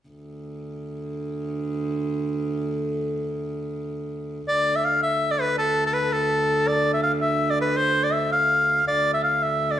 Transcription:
0.08 4.49 D2 medium
4.48 8.89 D2 medium
4.48 4.77 D5 medium
4.76 4.86 E5 medium
4.85 5.01 F5 medium
5.02 5.33 E5 medium
5.31 5.43 D5 medium
5.41 5.58 B4 medium
5.58 5.84 A4 medium
5.86 5.95 A4 medium
5.93 6.14 B4 medium
6.12 6.69 A4 medium
6.68 6.93 D5 medium
6.94 7.02 E5 medium
7.03 7.12 F5 medium
7.22 7.52 E5 medium
7.51 7.60 D5 medium
7.61 7.79 B4 medium
7.77 8.06 C5 medium
8.04 8.15 D5 medium
8.13 8.32 E5 medium
8.32 8.84 F5 medium
8.88 9.80 D2 medium
8.88 9.13 D5 medium
9.14 9.18 E5 medium
9.24 9.44 F5 medium
9.43 9.73 E5 medium
9.71 9.80 D5 medium

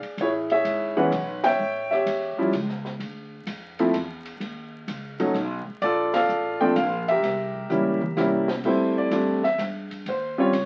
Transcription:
0.00 0.15 G#4 soft
0.00 0.16 D5 soft
0.00 muted upright bass stroke soft
0.00 ride soft
0.17 0.63 A1 medium
0.17 0.28 C#5 medium
0.17 kick soft
0.17 ride medium
0.21 0.95 E4 medium
0.21 0.50 G#4 medium
0.50 1.09 G#4 medium
0.50 0.96 C#5 medium
0.50 0.99 E5 medium
0.50 ride soft
0.64 1.10 G#1 medium
0.64 kick soft
0.64 hi-hat pedal soft
0.64 ride medium
0.97 1.11 E3 medium
0.97 1.11 G#3 medium
0.97 1.11 B3 medium
0.97 1.11 C#4 medium
0.97 1.56 B4 medium
0.97 1.44 C#5 medium
0.97 1.45 F#5 medium
1.12 1.58 B1 loud
1.12 kick soft
1.12 hi-hat pedal soft
1.12 ride medium
1.44 1.91 C#5 medium
1.44 1.89 E5 medium
1.44 1.92 G5 loud
1.44 snare medium
1.44 ride medium
1.59 2.05 A1 medium
1.91 2.50 G4 medium
1.91 2.50 C#5 medium
1.91 2.49 E5 medium
1.91 snare soft
2.06 2.36 E2 medium
2.06 kick soft
2.06 hi-hat pedal soft
2.06 ride medium
2.37 2.52 F3 medium
2.37 2.52 G3 medium
2.37 2.52 C#4 soft
2.37 2.52 E4 medium
2.37 muted upright bass stroke soft
2.53 2.99 C#2 loud
2.53 kick soft
2.53 ride medium
2.69 snare soft
2.85 snare soft
2.99 3.45 D2 medium
2.99 kick soft
2.99 ride medium
3.47 3.92 F2 medium
3.47 kick soft
3.47 hi-hat pedal medium
3.47 ride medium
3.79 3.93 F3 medium
3.79 3.93 A3 medium
3.79 3.93 C4 medium
3.79 3.93 E4 medium
3.79 ride soft
3.94 4.39 E2 medium
3.94 kick soft
3.94 hi-hat pedal medium
3.94 ride medium
4.25 ride soft
4.40 4.86 D#2 medium
4.40 kick soft
4.40 ride medium
4.88 5.34 C#2 medium
4.88 kick soft
4.88 hi-hat pedal medium
4.88 ride medium
5.20 5.34 F#3 medium
5.20 5.34 A3 medium
5.20 5.34 C#4 medium
5.20 5.34 D#4 medium
5.20 ride soft
5.34 5.64 B1 medium
5.34 kick soft
5.34 ride medium
5.67 muted upright bass stroke soft
5.82 6.28 A#1 medium
5.82 6.58 F4 medium
5.82 6.15 A4 medium
5.82 6.11 D5 loud
5.82 kick soft
5.82 ride medium
6.14 6.74 A4 medium
6.14 6.73 D5 medium
6.14 6.62 F5 loud
6.14 snare medium
6.14 ride medium
6.29 6.75 A1 medium
6.29 hi-hat pedal medium
6.61 6.75 F3 medium
6.61 6.75 A3 medium
6.61 6.75 C4 medium
6.61 6.75 D4 medium
6.61 6.77 G5 medium
6.76 7.22 A#1 loud
6.76 7.09 F5 medium
6.76 kick soft
6.76 hi-hat pedal medium
6.76 ride medium
7.08 8.47 G4 medium
7.08 8.47 A#4 medium
7.08 8.46 E5 medium
7.08 kick soft
7.08 ride soft
7.23 7.69 C2 medium
7.23 kick soft
7.23 snare soft
7.23 ride soft
7.55 kick soft
7.70 8.16 C#2 medium
7.70 7.99 G3 medium
7.70 7.99 A#3 soft
7.70 7.99 C#4 medium
7.70 7.99 E4 medium
7.70 hi-hat pedal soft
7.70 mid tom soft
8.01 mid tom medium
8.17 8.63 C2 medium
8.17 8.46 G3 medium
8.17 8.46 A#3 medium
8.17 8.47 C#4 medium
8.17 8.46 E4 medium
8.17 snare medium
8.17 hi-hat pedal soft
8.48 snare medium
8.64 9.10 F2 medium
8.64 9.11 G3 medium
8.64 9.11 A3 medium
8.64 9.11 C4 medium
8.64 9.11 E4 medium
8.64 8.97 C5 medium
8.64 kick medium
8.64 crash medium
8.98 9.41 D5 medium
9.11 9.57 E2 medium
9.11 9.41 G3 medium
9.11 9.41 A3 medium
9.11 9.41 C4 medium
9.11 9.41 D4 medium
9.11 kick soft
9.11 hi-hat pedal medium
9.11 ride medium
9.43 9.59 E5 medium
9.43 snare soft
9.58 10.05 G2 medium
9.58 kick soft
9.58 snare soft
9.58 hi-hat pedal soft
9.58 ride medium
9.90 kick soft
9.90 ride soft
10.06 10.52 D#2 medium
10.06 10.39 C5 medium
10.06 kick soft
10.06 ride medium
10.38 10.52 G3 medium
10.38 10.52 C4 medium
10.38 10.52 C#4 medium
10.38 10.52 F4 medium
10.38 10.65 C#5 medium
10.53 10.65 C#2 medium
10.53 kick soft
10.53 hi-hat pedal medium
10.53 ride medium

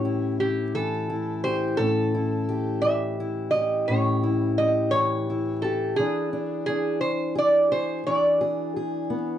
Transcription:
0.00 1.74 A2 medium
0.00 0.74 E3 medium
0.00 1.74 C#4 medium
0.00 1.43 G4 medium
0.00 0.42 C#5 medium
0.05 0.40 E4 medium
0.40 1.09 E4 medium
0.40 0.72 G4 medium
0.75 2.83 E3 medium
0.75 1.40 A4 medium
1.10 2.14 E4 medium
1.44 1.75 G4 medium
1.44 1.80 C5 medium
1.77 3.88 A2 medium
1.77 3.88 C#4 medium
1.77 2.78 A4 loud
2.15 3.20 E4 medium
2.49 3.53 G4 medium
2.82 4.92 E3 medium
2.82 3.48 E5 medium
3.20 4.23 E4 medium
3.51 4.58 G4 medium
3.51 3.88 D#5 medium
3.88 5.93 A2 medium
3.88 5.93 C#4 medium
3.88 4.53 C#5 medium
4.23 5.29 E4 medium
4.58 5.63 G4 medium
4.58 4.93 D#5 medium
4.91 5.99 E3 medium
4.91 5.63 C#5 loud
5.30 5.99 E4 medium
5.62 5.94 G4 medium
5.62 5.96 A4 medium
5.96 8.06 E3 medium
5.96 6.32 D4 medium
5.96 6.65 G#4 medium
6.33 6.68 D4 medium
6.66 8.07 D4 medium
6.66 6.98 G#4 medium
7.01 7.33 C5 medium
7.35 7.71 G#4 medium
7.35 7.73 D5 medium
7.71 8.40 G#4 medium
7.71 8.03 C5 medium
8.07 9.38 E3 medium
8.07 9.38 D4 medium
8.07 9.06 D5 medium
8.41 8.75 G#4 medium
8.76 9.38 G#4 medium
9.10 9.38 B3 medium

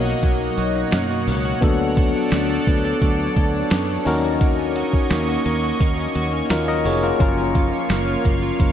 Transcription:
0.00 0.13 B1 loud
0.00 1.58 B2 medium
0.00 0.23 F#3 medium
0.00 0.92 A#3 medium
0.00 1.58 A#3 medium
0.00 0.39 D#4 medium
0.00 1.58 D#4 medium
0.00 1.58 F#4 medium
0.00 1.59 A#4 medium
0.00 4.02 C#5 medium
0.00 1.59 D#5 medium
0.00 4.02 F#5 medium
0.06 0.57 F#4 medium
0.23 0.48 B1 loud
0.23 1.62 F#3 medium
0.23 kick loud
0.23 closed hi-hat medium
0.41 0.74 D#4 medium
0.57 0.83 B1 medium
0.57 1.10 F#4 medium
0.57 closed hi-hat medium
0.75 1.69 D#4 medium
0.92 1.29 F#2 medium
0.92 1.26 A#3 medium
0.92 snare loud
0.92 clap medium
0.92 closed hi-hat medium
0.92 tambourine medium
1.11 1.45 F#4 medium
1.27 1.52 C#2 medium
1.27 1.69 A#3 medium
1.27 open hi-hat medium
1.45 1.97 F#4 medium
1.61 2.12 D2 loud
1.61 3.01 F#3 medium
1.61 4.02 B3 medium
1.61 4.02 D4 medium
1.61 4.03 F#4 medium
1.61 4.04 A4 medium
1.61 4.03 A4 medium
1.61 4.04 D5 medium
1.61 kick loud
1.61 closed hi-hat medium
1.80 2.14 D4 medium
1.97 2.49 A4 medium
1.97 kick loud
1.97 closed hi-hat medium
2.15 3.18 D4 medium
2.32 2.57 D2 loud
2.32 2.66 B3 medium
2.32 snare loud
2.32 clap medium
2.32 closed hi-hat medium
2.32 tambourine medium
2.50 2.83 A4 medium
2.67 2.92 D2 loud
2.67 3.70 B3 medium
2.67 kick loud
2.67 closed hi-hat medium
2.85 3.36 A4 medium
3.02 3.27 D2 medium
3.02 6.52 F#3 medium
3.02 kick medium
3.02 closed hi-hat medium
3.19 3.53 D4 medium
3.36 3.62 D2 loud
3.36 3.88 A4 medium
3.36 kick medium
3.36 closed hi-hat medium
3.54 4.14 D4 medium
3.71 3.96 F#2 loud
3.71 4.06 B3 medium
3.71 snare loud
3.71 clap medium
3.71 closed hi-hat medium
3.71 tambourine medium
3.89 4.13 A4 medium
4.05 4.82 D#2 loud
4.05 8.72 A#3 medium
4.05 4.41 A#3 medium
4.05 6.81 C#4 medium
4.05 6.81 D#4 medium
4.05 6.47 F#4 medium
4.05 6.47 A#4 medium
4.05 8.72 C#5 medium
4.05 7.17 D#5 medium
4.05 8.72 C#6 medium
4.05 open hi-hat medium
4.24 4.76 F#4 medium
4.41 5.11 A#3 medium
4.41 kick loud
4.41 closed hi-hat medium
4.59 4.93 C#4 medium
4.76 5.28 F#4 medium
4.76 closed hi-hat medium
4.93 5.98 C#4 medium
4.93 kick medium
5.11 5.36 D#2 loud
5.11 5.46 A#3 medium
5.11 snare loud
5.11 clap medium
5.11 closed hi-hat medium
5.11 tambourine medium
5.29 5.63 F#4 medium
5.46 5.71 D#2 medium
5.46 5.80 A#3 medium
5.46 closed hi-hat medium
5.63 6.15 F#4 medium
5.80 6.06 D#2 loud
5.80 6.50 A#3 medium
5.80 kick loud
5.80 closed hi-hat medium
5.98 6.33 C#4 medium
6.15 6.41 D#2 loud
6.15 6.68 F#4 medium
6.15 closed hi-hat medium
6.33 7.37 C#4 medium
6.50 6.87 D#2 medium
6.50 6.85 A#3 medium
6.50 6.67 F4 medium
6.50 6.67 A#4 medium
6.50 snare loud
6.50 clap medium
6.50 closed hi-hat medium
6.50 tambourine medium
6.68 7.02 F#4 medium
6.68 6.85 A#4 medium
6.68 6.85 D#5 medium
6.85 7.10 F1 medium
6.85 7.90 A#3 medium
6.85 7.02 G#4 medium
6.85 7.02 C#5 medium
6.85 open hi-hat medium
7.03 7.19 F4 medium
7.03 7.55 F#4 medium
7.03 7.21 A#4 medium
7.19 7.70 F#1 loud
7.19 8.58 F3 medium
7.19 8.72 C#4 medium
7.19 8.72 F4 medium
7.19 8.72 A#4 medium
7.19 8.72 F5 medium
7.19 kick loud
7.19 closed hi-hat medium
7.38 7.71 C#4 medium
7.55 8.06 F4 medium
7.55 kick loud
7.55 closed hi-hat medium
7.72 8.72 C#4 medium
7.90 8.15 F#1 loud
7.90 8.24 A#3 medium
7.90 snare loud
7.90 clap medium
7.90 closed hi-hat medium
7.90 tambourine medium
8.07 8.41 F4 medium
8.25 8.50 F#1 medium
8.25 8.72 A#3 medium
8.25 kick medium
8.25 closed hi-hat medium
8.42 8.72 F4 medium
8.60 8.72 F#1 loud
8.60 8.72 F3 medium
8.60 kick medium
8.60 closed hi-hat loud

